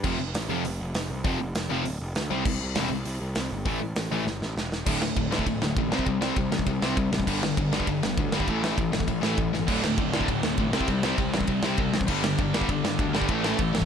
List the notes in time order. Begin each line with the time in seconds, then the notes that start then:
0.04 F1 F2 C3 F3, kick, crash
0.19 F1
0.34 A1, snare, open hi-hat
0.49 F2 C3 F3
0.65 F1, open hi-hat
0.80 F1
0.94 F1, snare, open hi-hat
1.10 C2
1.25 F1 F2 C3 F3, kick, open hi-hat
1.40 F1
1.55 F1, snare, open hi-hat
1.70 F1 F2 C3 F3
1.85 D1, open hi-hat
2.00 F1
2.15 D2, snare, open hi-hat
2.30 C2 C3 G3 C4
2.45 C2, kick, crash
2.60 C2
2.75 E1 C3 G3 C4, snare, open hi-hat
2.90 C2
3.05 C2, open hi-hat
3.21 C2
3.35 C2, snare, open hi-hat
3.51 G1
3.65 A1 A2 E3 A3, kick, open hi-hat
3.81 A1
3.96 A1, snare, open hi-hat
4.11 A1 A2 E3 A3
4.26 G1, snare
4.41 A1, snare
4.57 E1, snare
4.72 snare
4.86 D1 D2 A2 D3, kick, crash
5.02 D2 A2, snare
5.16 D1 D2 A2, kick, ride
5.31 D2 A2 D3, snare
5.39 kick
5.46 D1 D2 A2, kick, ride
5.62 D1 D2 A2, snare
5.77 A1 D2 A2, kick, ride
5.92 C2 C3 G3 C4, snare
5.99 kick
6.06 C2 C3 G3, kick, ride
6.21 C3 G3 C4, snare
6.36 C2 C3 G3, kick, ride
6.52 A1 C3 G3, snare
6.59 kick
6.66 C2 C3 G3, kick, ride
6.82 C2 C3 G3 C4, snare
6.97 C2 C3 G3, kick, ride
7.12 A1 C3 G3, snare
7.20 kick
7.27 G1 G2 D3 G3, kick, crash
7.42 G2 D3, snare
7.57 G1 G2 D3, kick, ride
7.72 G2 D3 G3, snare
7.80 kick
7.87 G1 G2 D3, kick, ride
8.03 G1 G2 D3, snare
8.17 D2 G2 D3, kick, ride
8.32 G1 G2 D3 G3, snare
8.40 kick
8.48 A1 A2 E3 A3, kick, ride
8.63 A2 E3 A3, snare
8.78 A1 A2 E3, kick, ride
8.92 G1 A2 E3, snare
9.00 kick
9.07 A1 A2 E3, kick, ride
9.21 A1 A2 E3 A3, snare
9.37 A1 A2 E3, kick, ride
9.53 G1 A2 E3, snare
9.68 D1 D2 A2 D3, kick, crash
9.83 D2 A2, snare
9.98 D1 D2 A2, kick, ride
10.13 D2 A2 D3, snare
10.21 kick
10.28 D1 D2 A2, kick, ride
10.43 D1 D2 A2, snare
10.58 A1 D2 A2, kick, ride
10.73 C2 C3 G3 C4, snare
10.81 kick
10.88 C2 C3 G3, kick, ride
11.03 C3 G3 C4, snare
11.18 C2 C3 G3, kick, ride
11.33 A1 C3 G3, snare
11.41 kick
11.47 C2 C3 G3, kick, ride
11.63 C2 C3 G3 C4, snare
11.78 C2 C3 G3 C4, kick, ride
11.94 A1 C3 G3, snare
12.01 kick
12.08 G1 G2 D3 G3, kick, crash
12.24 G2 D3, snare
12.38 G1 G2 D3, kick, ride
12.54 G2 D3 G3, snare
12.61 kick
12.69 G1 G2 D3, kick, ride
12.84 G1 G2 D3, snare
12.99 D2 G2 D3, kick, ride
13.13 G1 G2 D3 G3, snare
13.22 kick
13.28 A1 A2 E3 A3, kick, ride
13.44 A2 E3 A3, snare
13.58 A1 A2 E3, kick, ride
13.73 G1 A2 E3, snare
13.82 kick